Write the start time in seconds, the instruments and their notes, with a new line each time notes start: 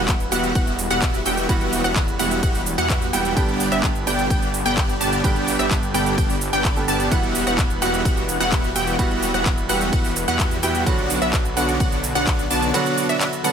Already playing: detuned saw bass E1, grand piano E3 G3 B3 F#5, analog synth pad E3 G3 B3 F#5, supersaw synth B3 F#4 G4 E5 F#5, synth pluck F#5
0.08 kick, clap, closed hi-hat, ride, shaker
0.20 closed hi-hat, shaker
0.31 detuned saw bass E1, grand piano E3 G3 B3 F#4, supersaw synth B3 F#4 G4 E5 F#5, synth pluck F#5, open hi-hat, shaker
0.44 closed hi-hat, shaker
0.55 detuned saw bass E1, supersaw synth B3 F#4 G4 E5 F#5, synth pluck F#5, kick, closed hi-hat, ride, shaker
0.67 closed hi-hat, shaker
0.79 open hi-hat, shaker
0.90 detuned saw bass E1, supersaw synth B3 F#4 G4 E5 F#5, synth pluck F#5, closed hi-hat, shaker
1.02 kick, clap, closed hi-hat, ride, shaker
1.14 closed hi-hat, shaker
1.26 detuned saw bass E1, supersaw synth B3 F#4 G4 E5 G5, synth pluck G5, open hi-hat, shaker
1.37 closed hi-hat, shaker
1.48 detuned saw bass E1, grand piano E3 G3 B3 F#4, supersaw synth B3 F#4 G4 E5 F#5, synth pluck F#5, kick, closed hi-hat, ride, shaker
1.61 closed hi-hat
1.73 open hi-hat, shaker
1.84 detuned saw bass E1, supersaw synth B3 F#4 G4 E5 F#5, synth pluck F#5, cross-stick, closed hi-hat, shaker
1.96 kick, clap, closed hi-hat, ride, shaker
2.08 closed hi-hat, shaker
2.18 detuned saw bass E1, grand piano E3 G3 B3 G4, supersaw synth B3 F#4 G4 E5 F#5, synth pluck F#5, open hi-hat, shaker
2.31 closed hi-hat, shaker
2.43 detuned saw bass E1, supersaw synth B3 F#4 G4 E5 F#5, synth pluck F#5, kick, closed hi-hat, ride, shaker
2.55 open hi-hat, shaker
2.66 open hi-hat, shaker
2.78 detuned saw bass E2, supersaw synth B3 F#4 G4 E5 F#5, synth pluck F#5, closed hi-hat, shaker
2.90 kick, clap, closed hi-hat, ride, shaker
3.02 closed hi-hat, shaker
3.13 detuned saw bass E1, grand piano E3 G3 B3 G4, supersaw synth B3 F#4 G4 E5 G5, synth pluck G5, open hi-hat, shaker
3.25 closed hi-hat, shaker
3.36 detuned saw bass G1, grand piano G2 D3 G3 B3 G4, analog synth pad D3 G4, supersaw synth B3 D4 G4 D5 G5, synth pluck G5, kick, closed hi-hat, ride, shaker
3.49 closed hi-hat
3.60 open hi-hat, shaker
3.72 detuned saw bass G1, supersaw synth B3 D4 G4 D5 E5, synth pluck E5, cross-stick, closed hi-hat, shaker
3.83 kick, clap, closed hi-hat, ride, shaker
3.95 closed hi-hat, shaker
4.06 detuned saw bass G1, grand piano G2 D3 G3 B3 G4, supersaw synth B3 D4 G4 D5 G5, synth pluck G5, open hi-hat, shaker
4.19 closed hi-hat, shaker
4.30 detuned saw bass G1, supersaw synth B3 D4 G4 D5 G5, synth pluck G5, kick, closed hi-hat, ride, shaker
4.42 closed hi-hat, shaker
4.54 open hi-hat, shaker
4.65 detuned saw bass G1, supersaw synth B3 D4 G4 D5 G5, synth pluck G5, closed hi-hat, shaker
4.77 kick, clap, closed hi-hat, ride, shaker
4.89 closed hi-hat, shaker
5.01 detuned saw bass G1, supersaw synth B3 D4 G4 D5 A5, synth pluck A5, open hi-hat, shaker
5.13 closed hi-hat, shaker
5.23 detuned saw bass G1, grand piano G2 D3 G3 B3 G4, supersaw synth B3 D4 G4 D5 G5, synth pluck G5, kick, closed hi-hat, ride, shaker
5.36 closed hi-hat
5.48 open hi-hat, shaker
5.59 detuned saw bass G1, supersaw synth B3 D4 G4 D5 E5, synth pluck E5, cross-stick, closed hi-hat, shaker
5.71 kick, clap, closed hi-hat, ride, shaker
5.83 closed hi-hat, shaker
5.93 detuned saw bass G1, grand piano G2 D3 G3 B3 A4, supersaw synth B3 D4 G4 D5 G5, synth pluck G5, open hi-hat, shaker
6.06 closed hi-hat, shaker
6.18 detuned saw bass G1, supersaw synth B3 D4 G4 D5 G5, synth pluck G5, kick, closed hi-hat, ride, shaker
6.30 open hi-hat, shaker
6.41 open hi-hat, shaker
6.53 detuned saw bass G1, supersaw synth B3 D4 G4 D5 G5, synth pluck G5, closed hi-hat, shaker
6.65 kick, clap, closed hi-hat, ride, shaker
6.76 grand piano G2 D3 G3 B3 A4, closed hi-hat, shaker
6.88 detuned saw bass G1, supersaw synth B3 D4 G4 D5 A5, synth pluck A5, open hi-hat, shaker
7.00 closed hi-hat, shaker
7.10 detuned saw bass E1, grand piano E3 G3 B3 F#5, analog synth pad E3 B3 F#5, supersaw synth B3 F#4 G4 E5 F#5, synth pluck F#5, kick, closed hi-hat, ride, shaker
7.23 closed hi-hat
7.35 open hi-hat, shaker
7.47 detuned saw bass E1, supersaw synth B3 F#4 G4 E5 F#5, synth pluck F#5, cross-stick, closed hi-hat, shaker
7.58 kick, clap, closed hi-hat, ride, shaker
7.70 closed hi-hat, shaker
7.81 detuned saw bass E1, grand piano E3 G3 B3 F#4, supersaw synth B3 F#4 G4 E5 F#5, synth pluck F#5, open hi-hat, shaker
7.94 closed hi-hat, shaker
8.05 detuned saw bass E1, supersaw synth B3 F#4 G4 E5 F#5, synth pluck F#5, kick, closed hi-hat, ride, shaker
8.17 closed hi-hat, shaker
8.29 open hi-hat, shaker
8.40 detuned saw bass E1, supersaw synth B3 F#4 G4 E5 F#5, synth pluck F#5, closed hi-hat, shaker
8.52 kick, clap, closed hi-hat, ride, shaker
8.64 closed hi-hat, shaker
8.75 detuned saw bass E1, supersaw synth B3 F#4 G4 E5 G5, synth pluck G5, open hi-hat, shaker
8.87 closed hi-hat, shaker
8.98 detuned saw bass E1, grand piano E3 G3 B3 F#4, supersaw synth B3 F#4 G4 E5 F#5, synth pluck F#5, kick, closed hi-hat, ride, shaker
9.11 closed hi-hat
9.23 open hi-hat, shaker
9.34 detuned saw bass E1, supersaw synth B3 F#4 G4 E5 F#5, synth pluck F#5, cross-stick, closed hi-hat, shaker
9.46 kick, clap, closed hi-hat, ride, shaker
9.58 closed hi-hat, shaker
9.68 detuned saw bass E1, grand piano E3 G3 B3 G4, supersaw synth B3 F#4 G4 E5 F#5, synth pluck F#5, open hi-hat, shaker
9.81 closed hi-hat, shaker
9.93 detuned saw bass E1, supersaw synth B3 F#4 G4 E5 F#5, synth pluck F#5, kick, closed hi-hat, ride, shaker
10.04 open hi-hat, shaker
10.16 open hi-hat, shaker
10.28 detuned saw bass E2, supersaw synth B3 F#4 G4 E5 F#5, synth pluck F#5, closed hi-hat, shaker
10.39 kick, clap, closed hi-hat, ride, shaker
10.51 closed hi-hat, shaker
10.62 detuned saw bass E2, grand piano E3 G3 B3 G4, supersaw synth B3 F#4 G4 E5 G5, synth pluck G5, open hi-hat, shaker
10.75 closed hi-hat, shaker
10.85 detuned saw bass B1, grand piano D3 F#3 B3 F#4, analog synth pad D3 F#3, supersaw synth B3 D4 F#4 D5 F#5, synth pluck F#5, kick, closed hi-hat, ride, shaker
10.98 closed hi-hat
11.10 open hi-hat, shaker
11.22 detuned saw bass B1, supersaw synth B3 D4 F#4 D5 E5, synth pluck E5, cross-stick, closed hi-hat, shaker
11.33 kick, clap, closed hi-hat, ride, shaker
11.45 closed hi-hat, shaker
11.56 detuned saw bass B1, grand piano D3 F#3 B3 F#4, supersaw synth B3 D4 F#4 D5 F#5, synth pluck F#5, open hi-hat, shaker
11.69 closed hi-hat, shaker
11.80 detuned saw bass B1, supersaw synth B3 D4 F#4 D5 F#5, synth pluck F#5, kick, closed hi-hat, ride, shaker
11.92 closed hi-hat, shaker
12.04 open hi-hat, shaker
12.15 detuned saw bass B1, supersaw synth B3 D4 F#4 D5 F#5, synth pluck F#5, closed hi-hat, shaker
12.27 kick, clap, closed hi-hat, ride, shaker
12.39 closed hi-hat, shaker
12.50 detuned saw bass B1, supersaw synth B3 D4 F#4 D5 A5, synth pluck A5, open hi-hat, shaker
12.63 closed hi-hat, shaker
12.73 grand piano D3 F#3 B3 F#4, supersaw synth B3 D4 F#4 D5 F#5, synth pluck F#5, cross-stick, closed hi-hat, ride, shaker
12.86 closed hi-hat, shaker
12.98 open hi-hat, shaker
13.09 supersaw synth B3 D4 F#4 D5 E5, synth pluck E5, cross-stick, closed hi-hat, shaker
13.21 clap, closed hi-hat, ride, shaker
13.33 closed hi-hat, shaker
13.43 grand piano D3 F#3 B3 A4, supersaw synth B3 D4 F#4 D5 F#5, synth pluck F#5, open hi-hat, shaker